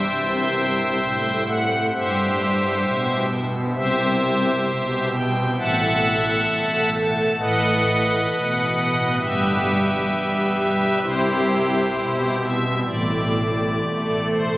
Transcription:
0.00 1.43 C5 medium
0.00 1.43 E5 medium
0.00 1.43 G5 loud
0.08 0.99 C2 medium
0.08 0.99 C3 medium
1.02 1.90 A2 medium
1.47 1.86 F#5 loud
1.92 2.81 G2 medium
1.92 3.26 G4 medium
1.92 3.26 C5 medium
1.92 3.26 E5 medium
2.84 3.73 B2 medium
3.75 4.64 C2 medium
3.75 4.64 C3 medium
3.75 5.08 G4 loud
3.75 5.08 C5 loud
3.75 5.08 E5 loud
4.67 5.55 B2 medium
5.12 5.51 G5 loud
5.58 6.46 A1 medium
5.58 6.46 A2 medium
5.58 6.90 E5 medium
5.58 6.90 F#5 medium
5.58 6.90 A5 loud
6.49 7.36 A3 medium
6.94 7.32 A5 loud
7.38 8.26 A1 medium
7.38 8.26 A2 loud
7.38 9.16 B4 loud
7.38 9.16 D#5 loud
7.38 9.16 F#5 loud
8.31 9.18 B2 medium
9.18 10.08 G1 medium
9.18 10.08 G2 medium
9.18 10.98 G4 loud
9.18 10.98 B4 loud
9.18 10.98 E5 loud
10.09 10.99 G3 medium
11.02 11.91 C2 loud
11.02 11.91 C3 medium
11.02 12.36 E4 loud
11.02 12.36 G4 loud
11.02 12.36 C5 loud
11.92 12.84 B2 medium
12.38 12.79 E5 loud
12.85 13.79 A1 medium
12.85 13.79 A2 medium
12.85 14.26 D5 loud
13.82 14.57 A3 medium
14.30 14.57 C5 loud

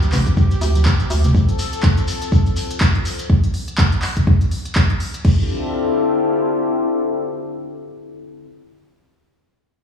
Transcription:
0.00 0.10 D2 loud
0.00 3.26 C4 medium
0.00 3.26 F4 medium
0.00 1.34 G4 loud
0.00 closed hi-hat medium
0.00 high conga medium
0.00 shekere soft
0.12 0.25 A1 loud
0.12 clap medium
0.12 open hi-hat loud
0.12 low conga medium
0.12 shekere medium
0.26 kick medium
0.26 closed hi-hat medium
0.26 shekere soft
0.37 kick loud
0.37 shekere soft
0.51 closed hi-hat soft
0.51 shekere soft
0.61 1.01 D2 loud
0.61 open hi-hat loud
0.61 shekere medium
0.75 closed hi-hat medium
0.75 high conga medium
0.75 shekere soft
0.85 kick loud
0.85 clap loud
0.85 shekere medium
1.00 1.09 D1 loud
1.00 closed hi-hat soft
1.00 shekere soft
1.10 1.26 D2 loud
1.10 open hi-hat loud
1.10 shekere medium
1.24 1.33 D1 loud
1.24 closed hi-hat medium
1.24 low conga medium
1.24 shekere soft
1.34 3.30 A4 medium
1.34 kick loud
1.34 shekere soft
1.49 closed hi-hat medium
1.49 shekere soft
1.59 open hi-hat loud
1.59 shekere loud
1.72 closed hi-hat medium
1.72 shekere soft
1.83 kick loud
1.83 clap loud
1.83 shekere medium
1.97 closed hi-hat medium
1.97 shekere soft
2.08 open hi-hat loud
2.08 shekere loud
2.22 closed hi-hat medium
2.22 shekere soft
2.32 kick loud
2.32 shekere soft
2.46 closed hi-hat soft
2.46 shekere soft
2.56 open hi-hat loud
2.56 shekere medium
2.71 closed hi-hat medium
2.71 shekere soft
2.80 kick loud
2.80 clap loud
2.80 shekere medium
2.95 closed hi-hat soft
3.05 open hi-hat loud
3.05 shekere medium
3.18 closed hi-hat medium
3.18 shekere soft
3.30 kick loud
3.44 closed hi-hat medium
3.54 open hi-hat loud
3.68 closed hi-hat medium
3.78 kick loud
3.78 clap loud
3.92 closed hi-hat medium
4.02 clap medium
4.02 open hi-hat loud
4.17 kick medium
4.17 closed hi-hat medium
4.27 kick loud
4.41 closed hi-hat soft
4.51 open hi-hat loud
4.65 closed hi-hat medium
4.75 kick loud
4.75 clap loud
4.90 closed hi-hat soft
5.00 open hi-hat loud
5.14 closed hi-hat medium
5.25 8.45 D3 medium
5.25 8.45 C4 medium
5.25 8.45 E4 medium
5.25 8.45 F4 medium
5.25 8.45 G4 medium
5.25 8.45 A4 medium
5.25 kick loud
5.25 crash medium

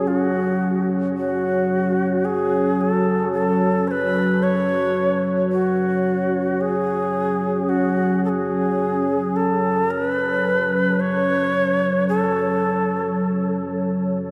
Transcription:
0.00 14.31 F#3 medium
0.00 14.31 C#4 medium
0.00 14.31 C#5 medium
0.07 0.88 F#4 medium
1.17 2.27 F#4 medium
2.25 2.82 G#4 medium
2.81 3.32 A4 medium
3.33 3.89 A4 medium
3.88 4.44 B4 loud
3.88 3.92 C#5 medium
4.43 5.24 C#5 medium
5.52 6.62 F#4 medium
6.61 7.70 G#4 medium
7.69 8.23 F#4 medium
8.24 8.30 A4 medium
8.29 9.37 G#4 medium
9.36 9.92 A4 medium
9.91 10.09 A#4 medium
10.09 11.02 B4 medium
11.00 12.07 C#5 loud
12.09 13.67 A4 medium

